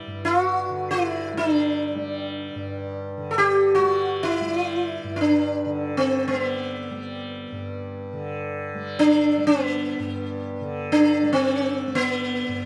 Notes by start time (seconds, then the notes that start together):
Already playing: D3 G3 E4
0.07 G2
0.25 F#4
0.70 D3
0.91 E4
1.33 G3
1.37 D#4
1.52 D4
1.95 G3
2.55 G2
3.17 D3
3.31 A4
3.38 G4
3.75 G3 F#4
4.23 E4
4.41 G3
5.04 G2
5.16 E4
5.21 D4
5.66 D3
5.97 C4
6.28 G3 C4
6.39 B3
6.91 G3
7.52 G2
8.13 D3
8.74 G3
8.99 D4
9.37 G3
9.47 B3
9.99 G2
10.61 D3
10.92 D4
11.23 G3
11.33 C4
11.86 G3
11.95 B3
12.48 G2